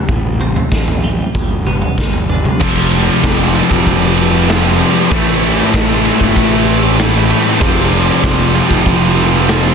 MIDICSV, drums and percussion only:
0, 0, Header, 1, 2, 480
1, 0, Start_track
1, 0, Tempo, 626959
1, 70, Time_signature, 4, 2, 24, 8
1, 7461, End_track
2, 0, Start_track
2, 0, Title_t, "Drums"
2, 65, Note_on_c, 9, 43, 78
2, 66, Note_on_c, 9, 36, 100
2, 142, Note_off_c, 9, 43, 0
2, 143, Note_off_c, 9, 36, 0
2, 312, Note_on_c, 9, 47, 68
2, 389, Note_off_c, 9, 47, 0
2, 431, Note_on_c, 9, 43, 80
2, 507, Note_off_c, 9, 43, 0
2, 549, Note_on_c, 9, 36, 90
2, 555, Note_on_c, 9, 38, 71
2, 626, Note_off_c, 9, 36, 0
2, 632, Note_off_c, 9, 38, 0
2, 673, Note_on_c, 9, 43, 72
2, 749, Note_off_c, 9, 43, 0
2, 1032, Note_on_c, 9, 36, 96
2, 1033, Note_on_c, 9, 43, 76
2, 1109, Note_off_c, 9, 36, 0
2, 1109, Note_off_c, 9, 43, 0
2, 1275, Note_on_c, 9, 47, 68
2, 1352, Note_off_c, 9, 47, 0
2, 1392, Note_on_c, 9, 43, 75
2, 1469, Note_off_c, 9, 43, 0
2, 1514, Note_on_c, 9, 47, 71
2, 1515, Note_on_c, 9, 36, 101
2, 1521, Note_on_c, 9, 38, 74
2, 1590, Note_off_c, 9, 47, 0
2, 1592, Note_off_c, 9, 36, 0
2, 1598, Note_off_c, 9, 38, 0
2, 1635, Note_on_c, 9, 43, 71
2, 1711, Note_off_c, 9, 43, 0
2, 1756, Note_on_c, 9, 43, 73
2, 1832, Note_off_c, 9, 43, 0
2, 1877, Note_on_c, 9, 47, 74
2, 1953, Note_off_c, 9, 47, 0
2, 1997, Note_on_c, 9, 49, 127
2, 1998, Note_on_c, 9, 36, 112
2, 2074, Note_off_c, 9, 36, 0
2, 2074, Note_off_c, 9, 49, 0
2, 2241, Note_on_c, 9, 51, 83
2, 2248, Note_on_c, 9, 38, 35
2, 2317, Note_off_c, 9, 51, 0
2, 2325, Note_off_c, 9, 38, 0
2, 2477, Note_on_c, 9, 51, 103
2, 2478, Note_on_c, 9, 36, 82
2, 2485, Note_on_c, 9, 38, 115
2, 2553, Note_off_c, 9, 51, 0
2, 2554, Note_off_c, 9, 36, 0
2, 2561, Note_off_c, 9, 38, 0
2, 2719, Note_on_c, 9, 51, 76
2, 2795, Note_off_c, 9, 51, 0
2, 2839, Note_on_c, 9, 36, 82
2, 2916, Note_off_c, 9, 36, 0
2, 2959, Note_on_c, 9, 36, 99
2, 2959, Note_on_c, 9, 51, 105
2, 3035, Note_off_c, 9, 36, 0
2, 3035, Note_off_c, 9, 51, 0
2, 3196, Note_on_c, 9, 51, 77
2, 3272, Note_off_c, 9, 51, 0
2, 3437, Note_on_c, 9, 51, 101
2, 3445, Note_on_c, 9, 38, 111
2, 3514, Note_off_c, 9, 51, 0
2, 3521, Note_off_c, 9, 38, 0
2, 3681, Note_on_c, 9, 51, 78
2, 3757, Note_off_c, 9, 51, 0
2, 3916, Note_on_c, 9, 36, 125
2, 3916, Note_on_c, 9, 51, 106
2, 3992, Note_off_c, 9, 51, 0
2, 3993, Note_off_c, 9, 36, 0
2, 4158, Note_on_c, 9, 51, 81
2, 4234, Note_off_c, 9, 51, 0
2, 4394, Note_on_c, 9, 36, 84
2, 4395, Note_on_c, 9, 51, 100
2, 4403, Note_on_c, 9, 38, 110
2, 4470, Note_off_c, 9, 36, 0
2, 4472, Note_off_c, 9, 51, 0
2, 4479, Note_off_c, 9, 38, 0
2, 4632, Note_on_c, 9, 51, 81
2, 4639, Note_on_c, 9, 38, 34
2, 4708, Note_off_c, 9, 51, 0
2, 4716, Note_off_c, 9, 38, 0
2, 4752, Note_on_c, 9, 36, 80
2, 4828, Note_off_c, 9, 36, 0
2, 4871, Note_on_c, 9, 36, 96
2, 4872, Note_on_c, 9, 51, 105
2, 4948, Note_off_c, 9, 36, 0
2, 4948, Note_off_c, 9, 51, 0
2, 5108, Note_on_c, 9, 51, 77
2, 5185, Note_off_c, 9, 51, 0
2, 5350, Note_on_c, 9, 51, 109
2, 5357, Note_on_c, 9, 38, 117
2, 5426, Note_off_c, 9, 51, 0
2, 5434, Note_off_c, 9, 38, 0
2, 5591, Note_on_c, 9, 51, 89
2, 5668, Note_off_c, 9, 51, 0
2, 5826, Note_on_c, 9, 51, 118
2, 5828, Note_on_c, 9, 36, 123
2, 5902, Note_off_c, 9, 51, 0
2, 5904, Note_off_c, 9, 36, 0
2, 6064, Note_on_c, 9, 51, 82
2, 6140, Note_off_c, 9, 51, 0
2, 6306, Note_on_c, 9, 36, 80
2, 6306, Note_on_c, 9, 51, 103
2, 6314, Note_on_c, 9, 38, 107
2, 6382, Note_off_c, 9, 36, 0
2, 6383, Note_off_c, 9, 51, 0
2, 6390, Note_off_c, 9, 38, 0
2, 6544, Note_on_c, 9, 51, 82
2, 6621, Note_off_c, 9, 51, 0
2, 6665, Note_on_c, 9, 36, 74
2, 6742, Note_off_c, 9, 36, 0
2, 6782, Note_on_c, 9, 51, 102
2, 6784, Note_on_c, 9, 36, 102
2, 6858, Note_off_c, 9, 51, 0
2, 6860, Note_off_c, 9, 36, 0
2, 7020, Note_on_c, 9, 51, 75
2, 7028, Note_on_c, 9, 38, 32
2, 7097, Note_off_c, 9, 51, 0
2, 7105, Note_off_c, 9, 38, 0
2, 7259, Note_on_c, 9, 51, 108
2, 7267, Note_on_c, 9, 38, 123
2, 7336, Note_off_c, 9, 51, 0
2, 7344, Note_off_c, 9, 38, 0
2, 7461, End_track
0, 0, End_of_file